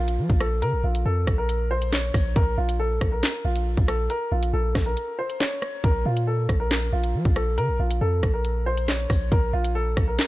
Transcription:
Already playing: A#1 F4
0.08 closed hi-hat
0.19 F3
0.30 A#1, kick
0.40 A4, cross-stick, closed hi-hat
0.62 C#3 A#4, closed hi-hat
0.73 A#1
0.84 A#1 F4
0.95 closed hi-hat
1.06 F2 A4
1.27 A#1, kick, cross-stick, closed hi-hat
1.38 A#4
1.49 closed hi-hat
1.71 C5
1.82 closed hi-hat
1.92 C#5, snare, clap, closed hi-hat
2.14 A#1, kick, cross-stick, open hi-hat
2.36 A#1 A#4, kick, closed hi-hat
2.58 A#1 F4
2.69 closed hi-hat
2.80 A4
3.01 A#1, kick, cross-stick, closed hi-hat
3.12 A#4
3.23 snare, clap, closed hi-hat
3.45 A#1 F4
3.56 closed hi-hat
3.77 A#1, kick
3.88 A4, cross-stick, closed hi-hat
4.10 A#4, closed hi-hat
4.32 A#1 F4
4.43 closed hi-hat
4.53 A#1 A4
4.75 A#1, kick, cross-stick, snare, closed hi-hat
4.86 A#4
4.97 closed hi-hat
5.19 C5
5.30 closed hi-hat
5.40 C#5, snare, clap, closed hi-hat
5.62 cross-stick, closed hi-hat
5.84 A#1 A#4, kick, closed hi-hat
6.06 A#2 F4
6.17 closed hi-hat
6.27 A4
6.49 A#1, kick, cross-stick, closed hi-hat
6.60 A#4
6.71 snare, clap, closed hi-hat
6.93 A#1 F4
7.03 closed hi-hat
7.14 F3
7.25 A#1, kick
7.36 A4, cross-stick, closed hi-hat
7.58 C#3 A#4, closed hi-hat
7.69 A#1
7.80 A#1 F4
7.91 closed hi-hat
8.01 F2 A4
8.23 A#1, kick, cross-stick, closed hi-hat
8.34 A#4
8.45 closed hi-hat
8.66 C5
8.77 closed hi-hat
8.88 C#5, snare, clap, closed hi-hat
9.10 A#1, kick, cross-stick, open hi-hat
9.32 A#1 A#4, kick, closed hi-hat
9.53 A#1 F4
9.64 closed hi-hat
9.75 A4
9.97 A#1, kick, cross-stick, closed hi-hat
10.08 A#4
10.19 snare, clap, closed hi-hat

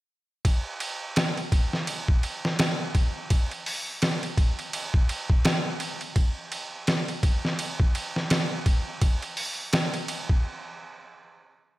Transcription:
0.45 kick, ride
0.80 ride
1.16 snare, ride
1.37 ride
1.52 kick, ride
1.73 snare
1.87 ride
2.08 kick
2.23 ride
2.45 snare
2.59 snare, ride
2.95 kick, ride
3.30 kick, ride
3.51 ride
3.66 open hi-hat
4.02 snare, ride
4.23 ride
4.38 kick, ride
4.59 ride
4.73 ride
4.94 kick
5.09 ride
5.30 kick
5.45 snare, ride
5.80 ride
6.01 ride
6.16 kick, ride
6.52 ride
6.87 snare, ride
7.08 ride
7.23 kick, ride
7.45 snare
7.59 ride
7.80 kick
7.95 ride
8.16 snare
8.30 snare, ride
8.66 kick, ride
9.02 kick, ride
9.22 ride
9.37 open hi-hat
9.73 snare, ride
9.94 ride
10.08 ride
10.29 kick

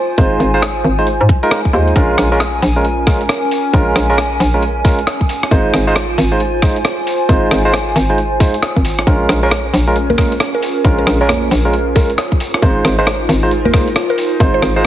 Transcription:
Already playing: F4 C5 G#5
0.18 G#1 G#3 D#4 F4 C5, kick, closed hi-hat
0.40 G#1, closed hi-hat
0.54 G#3 D#4 F4 C5
0.62 cross-stick, closed hi-hat
0.85 G#1
0.99 G#3 D#4 F4 C5
1.07 closed hi-hat
1.21 G#2
1.29 C2, kick
1.43 G#3 D#4 F4 A#4, closed hi-hat
1.51 cross-stick, closed hi-hat
1.65 kick
1.73 D#2 G#3 D#4 F4 C5
1.88 closed hi-hat
1.96 A#1 G#3 C#4 F4 A#4, kick, closed hi-hat
2.18 A#1, cross-stick, open hi-hat
2.32 G#3 C#4 F4 A#4
2.40 A#4, cross-stick, closed hi-hat
2.62 A#1, open hi-hat
2.76 G#3 C#4 F4 A#4
2.85 closed hi-hat
3.07 G#3 C#4 F4 A#4, kick, cross-stick, open hi-hat
3.21 closed hi-hat
3.29 cross-stick, closed hi-hat
3.51 open hi-hat
3.73 A#1 G#3 C#4 F4 A#4, kick, closed hi-hat
3.96 A#1, cross-stick, open hi-hat
4.10 G#3 C#4 F4 A#4
4.18 cross-stick, closed hi-hat
4.40 A#1, open hi-hat
4.54 G#3 C#4 F4 A#4
4.63 closed hi-hat
4.85 G#3 C#4 F4 A#4, kick, open hi-hat
4.99 closed hi-hat
5.07 cross-stick, closed hi-hat
5.21 kick
5.29 F4, open hi-hat
5.43 cross-stick
5.51 G#1 G#3 D#4 F4 C5, kick, closed hi-hat
5.61 C5
5.74 G#1, cross-stick, open hi-hat
5.87 G#3 D#4 F4 C5
5.96 cross-stick, closed hi-hat
6.18 G#1, open hi-hat
6.32 G#3 D#4 F4 C5
6.40 closed hi-hat
6.62 G#3 D#4 F4 C5, kick, cross-stick, open hi-hat
6.76 closed hi-hat
6.85 cross-stick, closed hi-hat
7.07 open hi-hat
7.29 G#1 G#3 D#4 F4 C5, kick, closed hi-hat
7.51 G#1, cross-stick, open hi-hat
7.65 G#3 D#4 F4 C5
7.74 cross-stick, closed hi-hat
7.96 G#1, open hi-hat
8.10 G#3 D#4 F4 C5, closed hi-hat
8.18 closed hi-hat
8.40 C2 G#3 D#4 F4 C5, kick, open hi-hat
8.54 closed hi-hat
8.62 cross-stick, closed hi-hat
8.76 G#1, kick
8.85 open hi-hat
8.99 cross-stick, closed hi-hat
9.07 A#1 G#3 C#4 F4 G#4 A#4 C5, kick, closed hi-hat
9.29 A#1, cross-stick, open hi-hat
9.43 G#3 C#4 F4 A#4 C#5
9.51 cross-stick, closed hi-hat
9.58 A#4
9.74 A#1, open hi-hat
9.88 G#3 C#4 F4 A#4
9.96 closed hi-hat
10.10 A#4, high conga
10.18 G#3 C#4 F4 A#4, kick, cross-stick, open hi-hat
10.32 closed hi-hat
10.40 cross-stick, closed hi-hat
10.55 A#4
10.63 open hi-hat
10.85 A#1 G#3 C#4 F4 A#4, kick, closed hi-hat
10.99 A#4
11.07 A#1, cross-stick, open hi-hat
11.21 G#3 C#4 F4 A#4 C#5
11.29 cross-stick, closed hi-hat, high conga
11.51 A#1, open hi-hat
11.65 G#3 C#4 F4 A#4
11.73 closed hi-hat
11.96 G#3 C#4 F4 A#4, kick, open hi-hat
12.10 closed hi-hat
12.18 cross-stick, closed hi-hat
12.32 kick
12.40 D#4 F4 A#4, open hi-hat
12.54 C5, cross-stick
12.62 G#1 G#3 D#4 F4 C5, kick, closed hi-hat
12.85 G#1, cross-stick, open hi-hat
12.99 G#3 D#4 F4 C5
13.07 cross-stick, closed hi-hat
13.29 G#1, open hi-hat
13.43 G#3 D#4 F4 C5
13.51 closed hi-hat
13.65 A#4, high conga
13.74 G#3 D#4 F4 A#4 C5, kick, cross-stick, open hi-hat
13.88 closed hi-hat
13.96 cross-stick, closed hi-hat
14.10 A#4
14.18 open hi-hat
14.40 G#1 G#3 D#4 F4 C5, kick, closed hi-hat
14.54 C5
14.62 G#1 C5, cross-stick, open hi-hat
14.76 G#3 D#4 F4 C5

